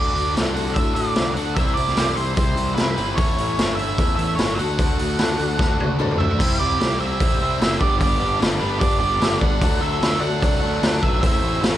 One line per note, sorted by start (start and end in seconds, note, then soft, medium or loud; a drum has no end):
0.00 0.14 D2 medium
0.00 0.34 D3 medium
0.00 0.17 A3 medium
0.00 1.56 A3 medium
0.00 0.16 D4 medium
0.00 1.56 D4 medium
0.00 0.14 F#4 loud
0.00 1.56 F#4 medium
0.00 0.15 A4 medium
0.00 0.32 D5 loud
0.00 1.56 D5 medium
0.15 0.35 D2 medium
0.15 0.35 A3 medium
0.15 0.36 D4 medium
0.15 0.36 F#4 medium
0.15 0.36 A4 medium
0.15 open hi-hat medium
0.35 0.75 C2 medium
0.35 0.75 D3 medium
0.35 0.58 A3 medium
0.35 0.55 D4 medium
0.35 0.55 F#4 medium
0.35 0.55 A4 medium
0.35 snare loud
0.35 open hi-hat medium
0.54 0.77 D4 medium
0.54 0.78 F#4 medium
0.54 0.77 A4 medium
0.54 0.74 F#5 medium
0.54 open hi-hat soft
0.59 0.76 A3 medium
0.74 0.95 A2 medium
0.74 1.14 D3 medium
0.74 1.15 A3 medium
0.74 0.95 E5 medium
0.74 kick loud
0.74 open hi-hat medium
0.78 1.16 D4 medium
0.78 1.17 F#4 loud
0.78 0.96 A4 medium
0.95 1.16 A2 medium
0.95 1.17 F#4 soft
0.95 1.17 A4 medium
0.95 1.33 D5 medium
0.95 open hi-hat medium
1.00 1.17 D4 soft
1.15 1.36 C2 medium
1.15 1.55 D3 medium
1.15 1.38 A3 medium
1.15 1.36 D4 medium
1.15 1.35 F#4 medium
1.15 snare loud
1.15 open hi-hat medium
1.19 1.58 A4 medium
1.34 1.58 D2 medium
1.34 1.56 D4 medium
1.34 1.56 F#4 medium
1.34 1.54 F#5 medium
1.34 open hi-hat medium
1.39 1.56 D3 medium
1.39 1.57 A3 medium
1.55 1.76 C2 medium
1.55 1.97 C3 medium
1.55 1.96 E3 medium
1.55 1.78 G3 medium
1.55 1.77 C4 medium
1.55 3.17 E4 medium
1.55 1.74 E5 loud
1.55 3.17 E5 medium
1.55 kick loud
1.55 open hi-hat medium
1.59 1.76 E4 loud
1.59 1.76 C5 medium
1.74 1.96 C2 medium
1.74 1.97 C4 medium
1.74 1.99 E4 medium
1.74 1.98 C5 medium
1.74 2.17 D5 loud
1.74 open hi-hat medium
1.79 1.96 G3 medium
1.88 snare soft
1.96 2.16 C2 loud
1.96 2.17 C3 medium
1.96 2.36 E3 medium
1.96 2.18 G3 medium
1.96 2.16 C4 medium
1.96 2.15 E4 medium
1.96 snare loud
1.96 open hi-hat medium
2.00 2.15 C5 medium
2.15 2.37 C2 medium
2.15 2.38 C4 medium
2.15 2.38 E4 medium
2.15 2.34 C5 medium
2.15 2.37 C5 soft
2.15 open hi-hat soft
2.19 2.37 G3 medium
2.35 2.56 C2 medium
2.35 2.98 C3 medium
2.35 2.75 E3 loud
2.35 2.76 G3 loud
2.35 2.75 C5 medium
2.35 kick loud
2.35 open hi-hat medium
2.39 2.78 C4 loud
2.39 2.78 E4 loud
2.39 2.56 C5 medium
2.57 2.77 C2 medium
2.57 2.78 C4 soft
2.57 2.78 E4 medium
2.57 2.78 C5 soft
2.57 open hi-hat medium
2.61 2.77 G3 soft
2.75 2.97 C2 medium
2.75 3.18 C3 medium
2.75 3.16 E3 medium
2.75 3.00 G3 medium
2.75 2.98 C4 medium
2.75 3.18 B4 medium
2.75 snare loud
2.75 open hi-hat medium
2.80 2.97 E4 medium
2.97 3.18 G1 medium
2.97 3.16 C3 medium
2.97 3.19 G3 medium
2.97 3.18 C4 medium
2.97 3.17 E4 medium
2.97 open hi-hat medium
3.15 3.38 A1 medium
3.15 3.59 A2 medium
3.15 3.57 E3 loud
3.15 3.37 B3 medium
3.15 4.58 B3 medium
3.15 4.58 E4 medium
3.15 4.57 A4 medium
3.15 3.75 C#5 medium
3.15 4.57 C#5 medium
3.15 kick loud
3.15 open hi-hat medium
3.21 3.41 A3 medium
3.21 3.40 C#4 loud
3.21 3.38 E4 loud
3.38 3.58 A1 medium
3.38 3.59 A3 medium
3.38 3.58 B3 medium
3.38 3.59 C#4 medium
3.38 3.60 E4 medium
3.38 open hi-hat soft
3.57 3.97 G1 medium
3.57 3.78 A2 medium
3.57 3.98 E3 medium
3.57 3.81 A3 medium
3.57 3.77 B3 medium
3.57 3.79 C#4 medium
3.57 snare loud
3.57 open hi-hat medium
3.62 3.77 E4 medium
3.75 3.99 B3 soft
3.75 4.00 E4 medium
3.75 4.15 E5 medium
3.75 open hi-hat soft
3.80 3.99 A3 medium
3.80 3.99 C#4 medium
3.98 4.18 E2 medium
3.98 4.58 A2 loud
3.98 4.37 E3 loud
3.98 4.38 A3 loud
3.98 4.19 B3 medium
3.98 4.39 C#4 loud
3.98 4.40 E4 loud
3.98 kick loud
3.98 open hi-hat medium
4.16 4.38 E2 medium
4.16 4.39 E4 soft
4.16 4.35 E5 medium
4.16 open hi-hat medium
4.20 4.39 B3 medium
4.20 4.38 C#4 soft
4.35 4.59 G1 medium
4.35 4.58 A2 medium
4.35 4.58 E3 medium
4.35 4.58 C#5 medium
4.35 snare loud
4.35 open hi-hat medium
4.40 4.58 A3 medium
4.40 4.60 B3 medium
4.40 4.59 C#4 medium
4.40 4.58 E4 medium
4.55 5.97 D3 medium
4.55 4.80 F#4 medium
4.55 4.98 A4 medium
4.55 5.94 F#5 medium
4.59 4.78 D2 medium
4.59 4.77 D3 medium
4.59 4.79 A3 medium
4.59 4.73 A#3 medium
4.59 4.80 D4 medium
4.59 4.73 D#4 medium
4.59 4.73 G4 medium
4.59 4.73 D#5 medium
4.59 open hi-hat medium
4.71 6.38 A3 medium
4.71 6.37 D4 medium
4.71 6.38 F#4 medium
4.71 6.38 D5 medium
4.78 4.99 D2 medium
4.78 5.17 D3 loud
4.78 5.01 A3 loud
4.78 4.99 D4 loud
4.78 4.98 F#4 loud
4.78 kick loud
4.78 open hi-hat medium
4.99 5.19 D2 medium
4.99 5.18 A3 medium
4.99 5.19 D4 medium
4.99 5.20 F#4 medium
4.99 5.20 A4 medium
4.99 open hi-hat medium
5.18 5.39 D2 loud
5.18 5.56 D3 medium
5.18 5.39 A3 medium
5.18 5.38 D4 medium
5.18 5.37 F#4 medium
5.18 5.38 A4 loud
5.18 snare loud
5.18 open hi-hat medium
5.38 5.58 D2 medium
5.38 5.57 A3 medium
5.38 5.58 D4 medium
5.38 5.59 F#4 medium
5.38 5.59 A4 medium
5.38 open hi-hat soft
5.57 5.78 D2 medium
5.57 5.97 D3 loud
5.57 5.98 A3 loud
5.57 5.99 D4 loud
5.57 6.00 F#4 loud
5.57 kick loud
5.57 snare medium
5.62 5.78 A4 medium
5.78 5.98 D2 medium
5.78 5.99 F#4 medium
5.78 6.00 A4 medium
5.78 high tom medium
5.83 5.98 D4 medium
5.98 6.20 D2 medium
5.98 6.38 D3 medium
5.98 6.21 A3 medium
5.98 6.19 D4 medium
5.98 6.18 F#4 medium
5.98 6.41 A4 loud
5.98 mid tom medium
6.11 mid tom medium
6.18 6.41 D2 medium
6.18 6.39 D4 medium
6.18 6.38 F#4 medium
6.18 6.58 C5 medium
6.18 6.59 E5 medium
6.18 floor tom medium
6.22 6.40 A3 medium
6.31 floor tom medium
6.39 6.59 C2 medium
6.39 6.78 C3 medium
6.39 6.81 E3 medium
6.39 6.61 G3 loud
6.39 7.79 C4 medium
6.39 6.59 C4 loud
6.39 7.79 E4 medium
6.39 6.58 E4 loud
6.39 7.79 G4 medium
6.39 6.82 C5 medium
6.39 7.79 E5 medium
6.39 kick loud
6.39 crash loud
6.59 6.80 C2 medium
6.59 6.81 G3 medium
6.59 6.81 C4 medium
6.59 6.81 E4 medium
6.59 6.98 G4 medium
6.59 6.97 D5 medium
6.79 6.99 C2 medium
6.79 7.00 C3 medium
6.79 7.00 G3 medium
6.79 6.98 C4 medium
6.79 6.97 E4 medium
6.79 7.20 C5 medium
6.79 snare loud
6.79 open hi-hat medium
6.98 7.19 C2 medium
6.98 7.19 C3 medium
6.98 7.20 G3 medium
6.98 7.20 C4 medium
6.98 7.21 E4 medium
6.98 7.76 C5 medium
6.98 7.80 E5 medium
7.20 7.40 A1 medium
7.20 7.58 C3 medium
7.20 7.61 E3 medium
7.20 7.41 G3 medium
7.20 7.40 C4 medium
7.20 7.38 E4 medium
7.20 7.61 C5 medium
7.20 kick loud
7.20 open hi-hat medium
7.40 7.60 C2 medium
7.40 7.60 G3 medium
7.40 7.61 C4 medium
7.40 7.62 E4 medium
7.60 7.80 F#1 medium
7.60 7.79 C3 medium
7.60 7.80 G3 medium
7.60 7.80 C4 medium
7.60 7.79 E4 medium
7.60 7.79 C5 medium
7.60 snare loud
7.60 open hi-hat medium
7.79 8.00 G1 medium
7.79 7.98 G2 medium
7.79 7.99 D3 medium
7.79 7.99 G3 medium
7.79 8.01 B3 medium
7.79 9.60 B3 medium
7.79 8.02 D4 medium
7.79 9.60 D4 medium
7.79 9.60 G4 medium
7.79 7.99 G4 medium
7.79 8.00 B4 soft
7.79 7.98 D5 medium
7.79 9.60 D5 medium
7.79 kick medium
7.99 8.20 G1 loud
7.99 8.40 G2 loud
7.99 8.38 D3 loud
7.99 8.21 G3 loud
7.99 8.20 B3 loud
7.99 8.19 D4 loud
7.99 8.38 G4 medium
7.99 8.41 B4 medium
7.99 8.37 D5 medium
7.99 kick loud
7.99 open hi-hat medium
8.19 8.40 G1 medium
8.19 8.39 G3 medium
8.19 8.40 B3 medium
8.19 8.42 D4 medium
8.39 8.60 G1 medium
8.39 8.61 D3 medium
8.39 8.61 G3 medium
8.39 8.59 B3 medium
8.39 8.59 D4 medium
8.39 8.60 B4 medium
8.39 snare loud
8.39 open hi-hat medium
8.60 8.80 G1 medium
8.60 9.02 G2 medium
8.60 8.78 D3 medium
8.60 8.80 G3 medium
8.60 8.80 B3 medium
8.60 8.81 D4 loud
8.60 8.79 G4 medium
8.60 8.81 B4 medium
8.64 8.80 D4 soft
8.79 9.00 G1 medium
8.79 9.19 D3 medium
8.79 9.01 G3 medium
8.79 9.00 B3 medium
8.79 8.98 D4 medium
8.79 8.99 G4 medium
8.79 9.22 B4 medium
8.79 8.98 D5 medium
8.79 kick loud
8.79 open hi-hat medium
8.99 9.20 G1 medium
8.99 9.20 G3 medium
8.99 9.21 B3 medium
8.99 9.22 D4 medium
8.99 9.38 G4 medium
8.99 9.41 D5 loud
9.20 9.40 G1 medium
9.20 9.60 G2 medium
9.20 9.40 D3 medium
9.20 9.39 G3 medium
9.20 9.39 B3 medium
9.20 9.38 D4 medium
9.20 snare loud
9.20 open hi-hat medium
9.24 9.63 B4 medium
9.39 9.61 G1 medium
9.39 9.60 G2 medium
9.39 9.59 D3 medium
9.39 9.60 G3 medium
9.39 9.60 B3 medium
9.39 9.59 D4 medium
9.39 9.78 D5 medium
9.39 9.82 F#5 loud
9.39 kick medium
9.61 9.81 D2 loud
9.61 9.99 D3 loud
9.61 9.82 F#3 loud
9.61 11.21 A3 medium
9.61 9.81 A3 loud
9.61 11.21 D4 medium
9.61 9.80 D4 loud
9.61 11.21 F#4 medium
9.61 10.02 F#4 medium
9.61 10.03 A4 medium
9.61 11.21 D5 medium
9.61 kick loud
9.61 open hi-hat medium
9.80 10.01 D2 medium
9.80 10.01 F#3 medium
9.80 10.01 A3 medium
9.80 10.02 D4 medium
9.80 10.18 A4 medium
9.80 10.19 E5 loud
10.01 10.20 D2 loud
10.01 10.23 D3 medium
10.01 10.22 F#3 medium
10.01 10.21 A3 medium
10.01 10.20 D4 loud
10.01 10.23 F#4 medium
10.01 snare loud
10.01 open hi-hat medium
10.06 10.21 A4 medium
10.20 10.41 D2 medium
10.20 10.39 D3 medium
10.20 10.41 F#3 medium
10.20 10.42 A3 medium
10.20 10.42 D4 medium
10.20 10.42 A4 medium
10.20 10.97 D5 medium
10.20 11.04 F#5 loud
10.25 10.41 D4 soft
10.25 10.42 F#4 soft
10.41 10.62 C2 loud
10.41 10.79 D3 medium
10.41 10.63 F#3 medium
10.41 10.62 A3 medium
10.41 10.59 D4 medium
10.41 10.83 F#4 medium
10.41 10.83 A4 medium
10.41 kick loud
10.41 open hi-hat medium
10.61 10.81 D2 medium
10.61 10.80 F#3 medium
10.61 10.81 A3 medium
10.61 10.83 D4 medium
10.80 11.01 D2 medium
10.80 11.02 D3 medium
10.80 11.01 F#3 medium
10.80 11.00 A3 medium
10.80 10.99 D4 medium
10.80 snare loud
10.80 open hi-hat medium
10.85 11.03 F#4 medium
10.85 11.01 A4 medium
11.00 11.22 B1 medium
11.00 11.21 D3 medium
11.00 11.21 F#3 medium
11.00 11.21 A3 medium
11.00 11.20 D4 medium
11.00 11.23 F#4 soft
11.00 11.22 A4 soft
11.00 11.21 B4 medium
11.00 11.20 E5 loud
11.00 kick medium
11.05 11.23 D4 soft
11.21 11.42 A1 loud
11.21 11.62 A2 loud
11.21 11.61 E3 loud
11.21 11.78 A3 medium
11.21 11.43 A3 loud
11.21 11.78 C4 medium
11.21 11.42 C4 loud
11.21 11.78 E4 medium
11.21 11.40 E4 loud
11.21 11.59 C5 medium
11.21 11.78 C5 medium
11.21 11.59 E5 loud
11.21 kick loud
11.21 open hi-hat medium
11.25 11.64 A4 medium
11.42 11.61 A1 medium
11.42 11.62 A3 medium
11.42 11.63 C4 medium
11.42 11.64 E4 medium
11.62 11.78 A1 loud
11.62 11.78 E3 medium
11.62 11.78 A3 medium
11.62 11.78 C4 medium
11.62 11.78 E4 medium
11.62 snare loud
11.62 open hi-hat medium